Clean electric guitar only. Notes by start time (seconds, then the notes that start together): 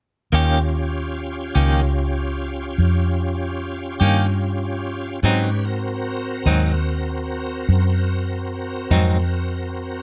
0.32 D#3 A#3 C#4 G4
1.55 D#3 A#3 C#4 G4
4.00 D#3 A#3 C#4 G4
5.23 G#2 F#3 C4 D#4
6.46 G#2 F#3 C4 D#4
8.91 G#2 F#3 C4 D#4